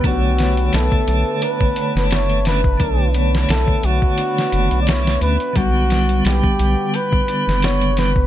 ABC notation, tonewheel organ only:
X:1
M:4/4
L:1/8
Q:"Swing 16ths" 1/4=87
K:Bm
V:1 name="Tonewheel organ"
[D,A,c]6- [D,A,c] [D,A,C] | [D,A,c]6- [D,A,c] [D,A,C] | [D,G,B,]6- [D,G,B,] [D,G,B,] |]